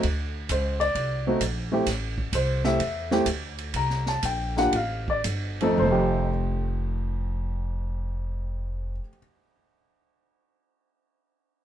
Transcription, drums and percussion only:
0.03 kick, ride
0.49 kick, hi-hat pedal, ride
0.81 ride
0.95 kick, ride
1.41 kick, hi-hat pedal, ride
1.86 kick, snare, ride
2.18 kick
2.33 kick, hi-hat pedal, ride
2.64 snare
2.79 kick, ride
3.11 snare
3.26 kick, hi-hat pedal, ride
3.59 ride
3.74 kick, ride
3.90 snare
4.06 snare
4.23 kick, hi-hat pedal, ride
4.57 snare
4.73 kick, ride
5.08 kick
5.24 kick, hi-hat pedal, ride
5.61 ride

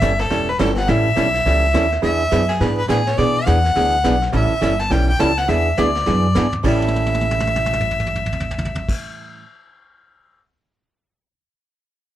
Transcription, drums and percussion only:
0.02 snare, hi-hat pedal
0.19 snare
0.30 brush sweep, snare
0.59 snare, hi-hat pedal
0.76 snare
0.88 brush sweep, snare
1.16 snare, hi-hat pedal
1.34 snare
1.45 brush sweep, snare
1.74 snare, hi-hat pedal
1.92 snare
2.03 brush sweep, snare
2.32 snare, hi-hat pedal
2.49 snare
2.61 brush sweep, snare
2.89 snare, hi-hat pedal
3.07 snare
3.18 brush sweep, snare
3.46 snare, hi-hat pedal
3.64 snare
3.75 brush sweep, snare
4.04 snare, hi-hat pedal
4.22 snare
4.33 brush sweep, snare
4.62 snare, hi-hat pedal
4.79 snare
4.91 brush sweep, snare
5.19 snare, hi-hat pedal
5.37 snare
5.49 brush sweep, snare
5.77 snare, hi-hat pedal
5.95 snare
6.06 snare
6.35 snare, hi-hat pedal
6.52 floor tom
6.64 kick, crash
6.82 high tom
6.88 high tom
6.96 high tom
7.06 high tom
7.14 high tom
7.21 high tom
7.31 mid tom
7.40 mid tom
7.47 mid tom
7.56 mid tom
7.66 mid tom
7.73 mid tom
7.80 mid tom
7.91 mid tom
8.00 mid tom
8.06 mid tom
8.15 mid tom
8.26 mid tom
8.32 floor tom
8.40 floor tom
8.51 floor tom
8.58 floor tom
8.65 floor tom
8.75 floor tom
8.89 kick, crash

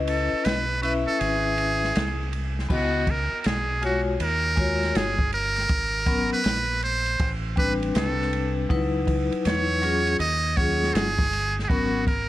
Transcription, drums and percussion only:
0.07 ride
0.45 snare, hi-hat pedal, ride
0.83 ride
1.21 ride
1.58 ride
1.84 snare
1.95 snare, hi-hat pedal, ride
2.33 ride
2.59 snare
2.70 kick, crash
3.07 kick, ride
3.44 snare, hi-hat pedal, ride
3.83 ride
4.20 ride
4.57 kick, ride
4.83 snare, ride
4.95 snare, hi-hat pedal, ride
5.19 kick
5.32 ride
5.56 snare, ride
5.69 kick, ride
6.06 kick, ride
6.44 snare, hi-hat pedal, ride
6.82 ride
7.06 ride
7.19 kick, ride
7.57 kick, ride
7.83 ride
7.95 snare, hi-hat pedal, ride
8.22 snare
8.33 ride
8.70 kick, ride
9.07 kick, ride
9.32 ride
9.45 snare, hi-hat pedal, ride
9.83 ride
10.07 ride
10.20 ride
10.57 kick, ride
10.83 snare
10.95 snare, hi-hat pedal, ride
11.19 kick, snare
11.33 ride
11.59 snare
11.70 kick, ride
12.07 kick, ride

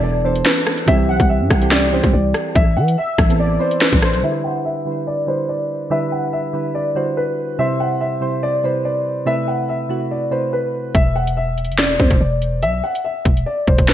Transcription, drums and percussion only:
0.35 closed hi-hat
0.46 snare
0.57 closed hi-hat
0.62 closed hi-hat
0.67 cross-stick, closed hi-hat
0.72 closed hi-hat
0.78 closed hi-hat
0.88 kick, closed hi-hat
1.20 kick, closed hi-hat
1.50 kick, cross-stick, closed hi-hat
1.62 closed hi-hat
1.71 snare
2.03 kick, closed hi-hat
2.34 cross-stick, closed hi-hat
2.55 kick, closed hi-hat
2.88 closed hi-hat
3.18 kick, cross-stick, closed hi-hat
3.30 closed hi-hat
3.71 closed hi-hat
3.81 snare
3.93 kick, closed hi-hat
3.99 cross-stick, closed hi-hat, open hi-hat
4.06 closed hi-hat
4.13 closed hi-hat
10.95 kick, closed hi-hat
11.27 closed hi-hat
11.58 closed hi-hat
11.65 closed hi-hat
11.72 closed hi-hat
11.79 snare, closed hi-hat
11.86 closed hi-hat
11.93 closed hi-hat
12.00 kick
12.10 kick, closed hi-hat
12.42 closed hi-hat
12.62 closed hi-hat
12.95 closed hi-hat
13.25 kick, closed hi-hat
13.37 closed hi-hat
13.67 kick
13.78 kick, closed hi-hat
13.88 snare

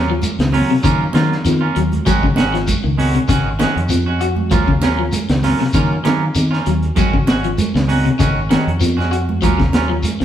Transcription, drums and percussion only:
0.22 closed hi-hat, high conga, low conga, shekere
0.39 snare, closed hi-hat
0.53 open hi-hat, high conga, shekere
0.83 kick, closed hi-hat, high conga, shekere
1.13 snare, closed hi-hat, high conga, shekere
1.32 snare
1.45 snare, closed hi-hat, high conga, shekere
1.76 closed hi-hat, shekere
1.92 closed hi-hat, low conga
2.06 kick, closed hi-hat, high conga, low conga, shekere
2.23 kick
2.36 snare, closed hi-hat, high conga, shekere
2.55 snare, closed hi-hat
2.67 kick, closed hi-hat, high conga, low conga, shekere
2.98 open hi-hat, high conga, shekere
3.15 closed hi-hat
3.28 kick, closed hi-hat, high conga, shekere
3.59 snare, closed hi-hat, high conga, shekere
3.77 closed hi-hat
3.89 closed hi-hat, high conga, shekere
4.21 closed hi-hat, shekere
4.36 low conga
4.51 kick, closed hi-hat, high conga, low conga, shekere
4.68 kick
4.82 snare, closed hi-hat, high conga, shekere
5.12 closed hi-hat, high conga, low conga, shekere
5.29 snare, closed hi-hat
5.42 snare, open hi-hat, high conga, shekere
5.60 snare
5.73 kick, closed hi-hat, high conga, shekere
6.05 snare, closed hi-hat, high conga, shekere
6.35 closed hi-hat, high conga, shekere
6.53 snare
6.66 closed hi-hat, shekere
6.82 closed hi-hat
6.96 kick, closed hi-hat, high conga, low conga, shekere
7.13 kick
7.27 snare, closed hi-hat, high conga, shekere
7.44 closed hi-hat
7.58 closed hi-hat, high conga, low conga, shekere
7.76 snare
7.89 open hi-hat, high conga, shekere
8.06 closed hi-hat
8.19 kick, closed hi-hat, high conga, shekere
8.50 snare, closed hi-hat, high conga, shekere
8.68 closed hi-hat
8.80 closed hi-hat, high conga, shekere
8.98 snare, high conga
9.11 closed hi-hat, shekere
9.29 low conga
9.42 kick, closed hi-hat, high conga, low conga, shekere
9.60 kick, snare
9.73 snare, closed hi-hat, high conga, shekere
10.03 closed hi-hat, high conga, low conga, shekere
10.21 closed hi-hat

